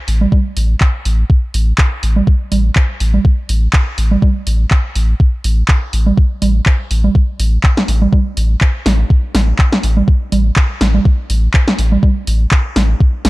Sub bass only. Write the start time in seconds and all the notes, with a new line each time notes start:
0.08 A1
0.57 A1
1.05 A1
1.54 A1
2.03 A1
2.52 A1
3.00 A1
3.49 A1
3.98 A1
4.47 A1
4.95 A1
5.44 A1
5.93 A1
6.42 A1
6.91 A1
7.39 A1
7.88 A1
8.37 A1
8.86 A1
9.35 A1
9.83 A1
10.32 A1
10.81 A1
11.30 A1
11.79 A1
12.27 A1
12.76 A1
13.25 A1